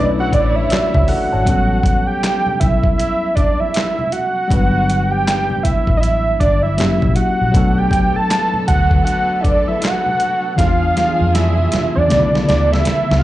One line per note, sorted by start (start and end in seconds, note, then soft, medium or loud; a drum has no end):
0.00 0.29 B1 medium
0.00 1.43 D3 medium
0.00 1.43 A3 medium
0.00 1.45 A3 medium
0.00 1.43 C#4 medium
0.00 1.44 D4 medium
0.00 1.45 E4 medium
0.00 0.71 B4 medium
0.00 1.45 C#5 medium
0.19 0.32 F#5 medium
0.19 muted conga soft
0.33 0.66 A1 medium
0.33 0.57 D5 medium
0.33 kick medium
0.33 closed hi-hat medium
0.56 1.10 E5 medium
0.56 high conga medium
0.70 0.94 F#4 medium
0.70 0.94 D5 medium
0.70 muted fingered electric bass stroke soft
0.70 snare loud
0.70 clap medium
0.70 closed hi-hat medium
0.94 1.07 C#2 loud
0.94 1.08 E5 medium
0.94 kick medium
0.94 low conga medium
1.08 1.32 A4 medium
1.08 1.31 F#5 medium
1.08 2.08 F#5 loud
1.08 open hi-hat soft
1.08 high conga medium
1.33 1.46 G#1 loud
1.33 1.69 C#5 medium
1.33 1.69 A5 medium
1.44 2.01 A1 loud
1.44 4.47 F#3 medium
1.44 4.45 G3 medium
1.44 4.46 B3 medium
1.44 4.47 C#4 medium
1.44 kick loud
1.44 closed hi-hat medium
1.50 4.48 A4 medium
1.83 kick medium
1.83 closed hi-hat medium
1.83 high conga medium
2.07 2.62 G5 loud
2.24 snare medium
2.24 clap medium
2.24 closed hi-hat medium
2.46 high conga medium
2.46 low conga medium
2.60 2.94 B1 medium
2.60 2.97 E5 medium
2.60 kick medium
2.60 closed hi-hat medium
2.60 low conga medium
2.84 kick medium
2.98 3.37 E5 medium
2.98 closed hi-hat medium
2.98 muted conga soft
3.35 3.62 D5 medium
3.35 kick medium
3.35 closed hi-hat medium
3.60 4.14 E5 medium
3.60 high conga medium
3.74 snare loud
3.74 clap medium
3.74 closed hi-hat medium
3.99 muted conga soft
3.99 low conga medium
4.12 5.13 F#5 loud
4.12 closed hi-hat medium
4.12 high conga medium
4.48 5.61 G1 loud
4.48 6.75 F#3 medium
4.48 6.73 G3 medium
4.48 6.74 B3 medium
4.48 6.74 D4 medium
4.48 kick loud
4.48 closed hi-hat medium
4.53 6.76 B4 medium
4.76 muted conga soft
4.89 closed hi-hat medium
4.89 high conga medium
5.11 5.65 G5 loud
5.28 snare loud
5.28 clap medium
5.28 closed hi-hat medium
5.50 muted conga soft
5.50 high conga medium
5.50 low conga medium
5.63 5.97 E5 medium
5.63 muted fingered electric bass stroke soft
5.63 kick medium
5.63 closed hi-hat medium
5.63 low conga medium
5.87 6.34 A1 medium
5.87 kick medium
5.97 6.02 D#5 medium
5.97 6.39 E5 medium
6.03 closed hi-hat medium
6.27 muted conga soft
6.40 6.79 G1 medium
6.40 6.64 D5 loud
6.40 kick medium
6.40 closed hi-hat soft
6.63 7.17 E5 loud
6.63 high conga medium
6.77 7.00 F#1 medium
6.77 7.50 F#3 medium
6.77 7.54 A#3 medium
6.77 7.54 C#4 medium
6.77 7.55 E4 medium
6.77 7.55 G4 medium
6.77 snare loud
6.77 clap medium
6.77 closed hi-hat medium
7.02 7.15 A#1 medium
7.02 kick medium
7.02 muted conga soft
7.02 low conga medium
7.16 7.80 F#5 loud
7.16 closed hi-hat medium
7.16 high conga medium
7.41 7.53 A#1 medium
7.52 8.09 B1 loud
7.52 10.54 D3 medium
7.52 10.53 F#3 medium
7.52 10.53 A3 medium
7.52 10.54 B3 medium
7.52 10.54 A4 medium
7.52 kick loud
7.52 closed hi-hat medium
7.56 10.55 D4 medium
7.56 10.55 A4 medium
7.78 8.18 G5 loud
7.78 muted conga soft
7.91 kick medium
7.91 closed hi-hat medium
7.91 high conga medium
8.16 8.67 A5 loud
8.31 snare loud
8.31 clap medium
8.31 closed hi-hat medium
8.54 muted conga soft
8.54 high conga medium
8.54 low conga medium
8.68 9.02 D2 medium
8.68 9.03 F#5 loud
8.68 kick medium
8.68 closed hi-hat medium
8.68 low conga medium
8.91 kick medium
9.04 9.43 F#5 medium
9.04 closed hi-hat medium
9.41 9.69 D5 medium
9.41 9.45 E5 medium
9.41 kick medium
9.41 closed hi-hat medium
9.68 9.81 E5 medium
9.68 high conga medium
9.81 10.54 F#5 loud
9.81 snare loud
9.81 clap medium
9.81 closed hi-hat medium
9.81 muted conga soft
10.06 muted conga soft
10.06 low conga medium
10.20 closed hi-hat medium
10.20 high conga medium
10.56 10.92 E2 medium
10.56 12.06 E3 medium
10.56 12.07 G#3 medium
10.56 12.07 B3 medium
10.56 12.08 D4 medium
10.56 12.08 F4 medium
10.56 12.08 G#4 medium
10.56 11.36 F5 loud
10.56 kick loud
10.56 snare medium
10.56 closed hi-hat medium
10.61 10.68 E4 medium
10.68 12.12 F4 medium
10.82 muted conga soft
10.97 snare medium
10.97 closed hi-hat medium
10.97 high conga medium
11.21 11.66 F2 medium
11.35 11.95 E5 medium
11.35 snare medium
11.35 closed hi-hat medium
11.58 muted conga soft
11.58 high conga medium
11.58 low conga medium
11.72 muted fingered electric bass stroke soft
11.72 snare medium
11.72 closed hi-hat medium
11.72 low conga medium
11.95 12.09 E2 medium
11.95 12.44 D5 medium
12.07 12.44 B1 loud
12.07 13.23 D3 medium
12.07 13.23 E3 medium
12.07 13.23 A3 medium
12.07 13.23 B3 medium
12.07 13.23 E4 medium
12.07 13.23 A4 medium
12.07 closed hi-hat medium
12.11 13.23 C#3 medium
12.11 12.20 D#4 medium
12.11 snare medium
12.19 13.23 E4 medium
12.35 snare medium
12.48 12.82 D2 medium
12.48 12.70 D5 medium
12.48 snare medium
12.48 closed hi-hat soft
12.72 13.20 E5 medium
12.72 snare medium
12.72 high conga medium
12.85 muted fingered electric bass stroke soft
12.85 snare medium
12.85 closed hi-hat medium
12.85 muted conga soft
13.10 13.23 C#2 loud
13.10 snare medium
13.10 low conga medium
13.19 13.23 F5 medium